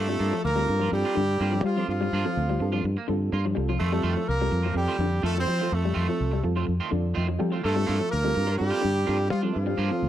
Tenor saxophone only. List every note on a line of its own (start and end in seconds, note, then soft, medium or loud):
0.00 0.41 A3 loud
0.44 0.89 A#3 medium
0.93 1.65 G3 medium
1.64 1.88 F3 medium
1.89 2.80 F3 medium
3.79 4.24 A3 loud
4.29 4.73 A#3 medium
4.77 5.21 G3 medium
5.27 5.37 A3 medium
5.40 5.75 C4 medium
5.74 6.45 A3 medium
7.65 8.11 A3 medium
8.09 8.57 A#3 medium
8.57 9.26 G3 medium
9.30 9.41 F3 medium
9.53 10.09 F3 medium